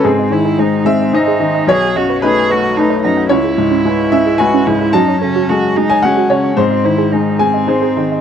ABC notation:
X:1
M:3/4
L:1/16
Q:1/4=110
K:G#phr
V:1 name="Synth pluck"
G d ^B G B z G d g G d d | B f d B d z B f a B f f | C G E C E z C G B C G G | F c A F A z F c f F c c |
G d ^B G B z G d g G d d |]
V:2 name="Cello"
^B,2 E2 D2 B,2 D4 | G2 F2 G2 F2 D2 D2 | E8 F2 E2 | D2 C2 F2 D2 C4 |
^B,2 E2 D2 B,6 |]
V:3 name="Upright piano"
G6 e2 d4 | c4 B4 z4 | c6 e2 g4 | a6- a g f2 c2 |
^B6 g2 B4 |]
V:4 name="Upright piano" clef=bass
G,,2 D,2 [G,D^B]2 G,2 [G,DB]2 D,2 | B,,,2 F,,2 [A,D]2 A,2 [A,DB]2 F,,2 | C,,2 G,,2 [G,EB]2 G,2 [G,EB]2 G,,2 | F,,2 C,2 [G,FG]2 G,2 [G,FG]2 C,2 |
G,,2 D,2 [G,DG]2 G,2 [G,DG]2 D,2 |]